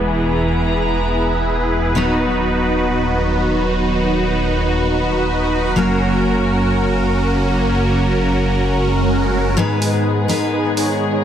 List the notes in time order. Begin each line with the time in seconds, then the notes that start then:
Already playing: E1 E3 G#3 B3 E4 G#4 B4
0.06 A#5
1.95 D#1 D#3 F#3 B3 D#4 F#4 B4
5.76 F#1 C#3 F#3 A#3 C#4 F#4 A#4
8.63 swell
9.57 G#2 D#3 G#3 B3 D#4 G#4 B4
9.82 open hi-hat
9.94 D#4 G#4 B4
10.28 G#2 G#3 B3 D#4 G#4 A#4 B4, open hi-hat
10.53 D#4 G#4 B4
10.77 D#4 G#4 C#5, open hi-hat
11.13 D#4 G#4 C#5